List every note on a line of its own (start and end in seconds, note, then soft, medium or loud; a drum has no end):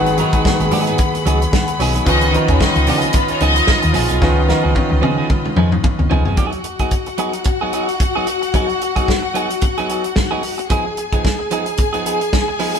0.00 0.20 G#1 medium
0.00 0.17 D#3 medium
0.00 0.18 G#3 medium
0.00 0.18 B3 medium
0.00 2.06 C#4 medium
0.00 0.10 D#4 medium
0.00 0.18 F#4 loud
0.00 0.10 G#4 medium
0.00 2.03 G#4 medium
0.00 2.03 F#5 medium
0.00 6.34 B5 medium
0.06 closed hi-hat soft
0.17 0.37 D#3 medium
0.17 0.33 F#3 medium
0.17 0.37 G#3 medium
0.17 0.37 B3 medium
0.17 0.33 B3 medium
0.17 0.33 D#4 medium
0.17 0.38 F#4 medium
0.17 0.33 A#4 medium
0.17 closed hi-hat medium
0.33 0.41 G#1 medium
0.33 0.45 F#3 soft
0.33 0.45 B3 soft
0.33 0.45 D#4 medium
0.33 0.45 G#4 medium
0.33 kick medium
0.33 closed hi-hat soft
0.44 1.19 D#3 medium
0.44 1.19 G#3 medium
0.44 0.52 A#3 medium
0.44 1.20 F#4 medium
0.44 muted clean electric guitar stroke soft
0.44 kick loud
0.44 snare loud
0.52 1.23 B3 medium
0.60 0.68 G#1 loud
0.60 muted clean electric guitar stroke soft
0.60 closed hi-hat soft
0.71 0.90 G#2 medium
0.71 0.88 F#3 medium
0.71 0.87 B3 medium
0.71 0.87 D#4 medium
0.71 0.86 G#4 medium
0.71 open hi-hat medium
0.87 0.98 F#3 medium
0.87 0.98 B3 medium
0.87 0.99 D#4 medium
0.87 0.99 G#4 medium
0.87 closed hi-hat soft
0.98 muted clean electric guitar stroke soft
0.98 kick loud
0.98 closed hi-hat medium
1.14 muted clean electric guitar stroke soft
1.14 closed hi-hat soft
1.26 1.44 C#2 medium
1.26 1.44 F#3 medium
1.26 1.42 B3 medium
1.26 1.42 D#4 medium
1.26 1.40 G#4 medium
1.26 closed hi-hat medium
1.42 muted clean electric guitar stroke soft
1.42 closed hi-hat soft
1.52 1.78 F#5 medium
1.52 muted clean electric guitar stroke soft
1.52 kick loud
1.52 snare loud
1.68 muted clean electric guitar stroke soft
1.68 closed hi-hat soft
1.79 1.98 B1 medium
1.79 1.96 F#3 medium
1.79 1.95 B3 medium
1.79 1.94 D#4 medium
1.79 1.94 G#4 medium
1.79 2.04 C#5 medium
1.79 snare soft
1.79 open hi-hat medium
1.95 2.07 F#3 medium
1.95 2.07 B3 medium
1.95 2.07 D#4 medium
1.95 2.07 G#4 medium
1.95 closed hi-hat soft
2.05 2.35 C#2 medium
2.05 2.25 D#3 medium
2.05 2.25 F3 medium
2.05 2.26 B3 medium
2.05 2.25 B3 medium
2.05 2.26 C#4 medium
2.05 2.29 D#4 loud
2.05 2.26 D#4 medium
2.05 6.34 F4 medium
2.05 2.26 F4 loud
2.05 2.26 G#4 medium
2.05 6.34 D#5 medium
2.05 2.28 D#5 loud
2.05 kick loud
2.05 closed hi-hat medium
2.21 closed hi-hat soft
2.32 2.52 D#3 medium
2.32 2.49 F3 medium
2.32 2.52 B3 medium
2.32 2.49 B3 medium
2.32 2.53 C#4 medium
2.32 2.49 D#4 medium
2.32 2.53 F4 medium
2.32 closed hi-hat medium
2.37 2.49 A#4 medium
2.48 2.57 D#2 medium
2.48 2.60 F3 medium
2.48 2.61 B3 medium
2.48 2.58 C#4 medium
2.48 2.61 D#4 soft
2.48 2.61 G#4 medium
2.48 2.58 C#5 medium
2.48 kick medium
2.48 closed hi-hat soft
2.59 3.34 D#3 medium
2.59 3.35 B3 medium
2.59 3.35 C#4 medium
2.59 3.11 D#4 medium
2.59 3.35 F4 medium
2.59 3.11 D#5 medium
2.59 muted clean electric guitar stroke soft
2.59 kick loud
2.59 snare loud
2.76 2.89 C#2 loud
2.76 muted clean electric guitar stroke medium
2.76 closed hi-hat soft
2.87 3.06 C#3 medium
2.87 3.04 F3 medium
2.87 3.03 B3 medium
2.87 3.03 D#4 loud
2.87 3.02 G#4 loud
2.87 open hi-hat medium
3.02 3.14 F3 medium
3.02 3.14 B3 medium
3.02 3.15 D#4 medium
3.02 3.15 G#4 medium
3.02 closed hi-hat medium
3.13 3.26 B3 medium
3.13 3.26 B4 medium
3.13 muted clean electric guitar stroke soft
3.13 kick loud
3.13 closed hi-hat medium
3.28 3.39 C#4 medium
3.28 3.39 C#5 loud
3.28 muted clean electric guitar stroke soft
3.28 closed hi-hat soft
3.40 3.59 C#2 medium
3.40 3.59 F3 medium
3.40 3.56 B3 loud
3.40 3.92 D#4 loud
3.40 3.55 D#4 medium
3.40 3.55 G#4 medium
3.40 3.92 D#5 loud
3.40 closed hi-hat medium
3.56 muted clean electric guitar stroke soft
3.56 closed hi-hat medium
3.67 muted clean electric guitar stroke soft
3.67 kick loud
3.67 snare loud
3.82 3.92 D#2 medium
3.82 muted clean electric guitar stroke medium
3.82 closed hi-hat soft
3.93 4.06 A#1 medium
3.93 4.10 F3 medium
3.93 4.09 B3 medium
3.93 4.09 D#4 medium
3.93 4.08 G#4 medium
3.93 snare soft
3.93 open hi-hat medium
4.09 4.19 B1 medium
4.09 4.20 F3 medium
4.09 4.21 B3 medium
4.09 4.21 D#4 medium
4.09 4.21 G#4 medium
4.09 closed hi-hat soft
4.20 4.51 C#2 loud
4.20 4.41 D#3 medium
4.20 4.40 F3 medium
4.20 4.41 B3 medium
4.20 4.40 B3 medium
4.20 4.41 C#4 medium
4.20 4.41 D#4 medium
4.20 4.42 F4 loud
4.20 4.41 G#4 medium
4.20 kick loud
4.20 snare soft
4.48 4.68 D#3 medium
4.48 4.63 F3 medium
4.48 4.63 B3 medium
4.48 4.69 B3 medium
4.48 4.68 C#4 medium
4.48 4.63 D#4 medium
4.48 4.69 F4 medium
4.48 4.63 A#4 medium
4.48 snare medium
4.63 4.72 C#2 medium
4.63 4.73 F3 medium
4.63 4.74 B3 medium
4.63 4.74 D#4 medium
4.63 4.74 G#4 medium
4.74 5.51 D#3 medium
4.74 5.51 B3 medium
4.74 5.51 C#4 medium
4.74 5.52 F4 medium
4.74 muted clean electric guitar stroke soft
4.74 kick loud
4.74 high tom medium
4.90 5.00 C#2 loud
4.90 muted clean electric guitar stroke medium
5.02 5.22 C#3 medium
5.02 5.18 F3 medium
5.02 5.18 B3 medium
5.02 5.17 D#4 loud
5.02 5.17 G#4 loud
5.02 high tom medium
5.18 5.29 F3 medium
5.18 5.29 B3 medium
5.18 5.30 D#4 medium
5.18 5.30 G#4 medium
5.30 muted clean electric guitar stroke soft
5.30 kick loud
5.30 mid tom medium
5.45 muted clean electric guitar stroke soft
5.45 mid tom medium
5.56 5.75 F2 medium
5.56 5.75 F3 medium
5.56 5.72 B3 medium
5.56 5.71 D#4 medium
5.56 5.70 G#4 medium
5.56 mid tom medium
5.72 muted clean electric guitar stroke soft
5.72 mid tom medium
5.83 muted clean electric guitar stroke soft
5.83 kick loud
5.83 mid tom loud
5.99 6.07 C#2 medium
5.99 muted clean electric guitar stroke soft
5.99 floor tom medium
6.10 6.21 C#2 medium
6.10 6.26 F3 medium
6.10 6.25 B3 medium
6.10 6.25 D#4 medium
6.10 6.24 G#4 medium
6.10 floor tom loud
6.25 6.34 F#1 medium
6.25 6.36 F3 medium
6.25 6.36 B3 medium
6.25 6.36 D#4 medium
6.25 6.37 G#4 medium
6.25 floor tom medium
6.36 6.58 F#3 medium
6.36 6.52 B3 medium
6.36 6.52 D#4 medium
6.36 10.66 F#4 medium
6.36 6.51 G#4 medium
6.36 10.66 F#5 medium
6.36 kick medium
6.36 closed hi-hat medium
6.52 muted clean electric guitar stroke soft
6.52 closed hi-hat soft
6.64 muted clean electric guitar stroke soft
6.64 closed hi-hat medium
6.79 6.92 F#3 soft
6.79 6.92 B3 soft
6.79 6.92 D#4 soft
6.79 6.92 G#4 medium
6.79 kick medium
6.79 closed hi-hat soft
6.91 kick medium
6.91 closed hi-hat medium
7.06 muted clean electric guitar stroke soft
7.06 closed hi-hat soft
7.18 7.37 F#3 medium
7.18 7.33 B3 medium
7.18 7.33 D#4 medium
7.18 7.32 G#4 medium
7.18 closed hi-hat medium
7.33 muted clean electric guitar stroke soft
7.33 closed hi-hat soft
7.44 muted clean electric guitar stroke soft
7.44 kick loud
7.44 closed hi-hat medium
7.61 7.71 F#3 medium
7.61 7.72 B3 medium
7.61 7.73 D#4 medium
7.61 7.73 G#4 medium
7.73 7.88 F#3 medium
7.73 7.88 B3 medium
7.73 7.88 D#4 medium
7.73 7.87 G#4 medium
7.73 closed hi-hat medium
7.88 muted clean electric guitar stroke soft
7.88 closed hi-hat soft
8.00 muted clean electric guitar stroke soft
8.00 kick loud
8.00 closed hi-hat medium
8.15 8.26 F#3 medium
8.15 8.26 B3 medium
8.15 8.27 D#4 medium
8.15 8.27 G#4 medium
8.27 muted clean electric guitar stroke soft
8.27 closed hi-hat medium
8.42 muted clean electric guitar stroke soft
8.42 closed hi-hat soft
8.54 8.72 F#3 medium
8.54 8.69 B3 medium
8.54 8.68 D#4 medium
8.54 8.67 G#4 medium
8.54 kick medium
8.54 closed hi-hat medium
8.68 muted clean electric guitar stroke soft
8.68 closed hi-hat soft
8.81 muted clean electric guitar stroke soft
8.81 closed hi-hat medium
8.96 9.09 F#3 soft
8.96 9.08 B3 soft
8.96 9.08 D#4 soft
8.96 9.08 G#4 medium
8.96 kick medium
8.96 closed hi-hat soft
9.08 kick medium
9.08 snare loud
9.22 muted clean electric guitar stroke soft
9.34 9.53 F#3 medium
9.34 9.50 B3 medium
9.34 9.49 D#4 medium
9.34 9.48 G#4 medium
9.34 closed hi-hat medium
9.50 muted clean electric guitar stroke soft
9.50 closed hi-hat soft
9.61 muted clean electric guitar stroke soft
9.61 kick loud
9.61 closed hi-hat medium
9.78 9.88 F#3 medium
9.78 9.89 B3 medium
9.78 9.89 D#4 medium
9.78 9.90 G#4 medium
9.78 closed hi-hat soft
9.89 10.04 F#3 medium
9.89 10.05 B3 medium
9.89 10.04 D#4 medium
9.89 10.03 G#4 medium
9.89 closed hi-hat medium
10.04 muted clean electric guitar stroke soft
10.04 closed hi-hat soft
10.16 muted clean electric guitar stroke soft
10.16 kick loud
10.16 snare loud
10.31 10.42 F#3 medium
10.31 10.42 B3 medium
10.31 10.42 D#4 medium
10.31 10.43 G#4 medium
10.43 muted clean electric guitar stroke soft
10.43 open hi-hat medium
10.58 muted clean electric guitar stroke medium
10.58 closed hi-hat soft
10.70 10.88 F3 medium
10.70 10.86 B3 medium
10.70 10.85 D#4 medium
10.70 12.79 G#4 medium
10.70 10.84 G#4 loud
10.70 12.79 G#5 medium
10.70 kick medium
10.70 closed hi-hat medium
10.85 muted clean electric guitar stroke soft
10.97 muted clean electric guitar stroke soft
10.97 closed hi-hat medium
11.12 11.25 F3 soft
11.12 11.25 B3 soft
11.12 11.25 D#4 soft
11.12 11.24 G#4 soft
11.12 kick medium
11.12 closed hi-hat soft
11.25 kick medium
11.25 snare medium
11.39 muted clean electric guitar stroke medium
11.51 11.69 F3 medium
11.51 11.66 B3 medium
11.51 11.66 D#4 loud
11.51 11.65 G#4 medium
11.51 closed hi-hat medium
11.66 muted clean electric guitar stroke soft
11.66 closed hi-hat soft
11.78 muted clean electric guitar stroke soft
11.78 kick loud
11.78 closed hi-hat medium
11.93 12.04 F3 medium
11.93 12.05 B3 medium
11.93 12.05 D#4 medium
11.93 12.05 G#4 medium
11.93 closed hi-hat soft
12.05 12.20 F3 medium
12.05 12.21 B3 medium
12.05 12.20 D#4 medium
12.05 12.19 G#4 medium
12.05 closed hi-hat medium
12.21 muted clean electric guitar stroke soft
12.21 closed hi-hat soft
12.33 muted clean electric guitar stroke soft
12.33 kick loud
12.33 snare loud
12.48 muted clean electric guitar stroke soft
12.59 12.75 F3 medium
12.59 12.74 B3 medium
12.59 12.74 D#4 medium
12.59 12.73 G#4 medium
12.59 open hi-hat medium
12.75 12.79 F3 medium
12.75 12.79 B3 medium
12.75 12.79 D#4 medium
12.75 12.79 G#4 medium
12.75 closed hi-hat soft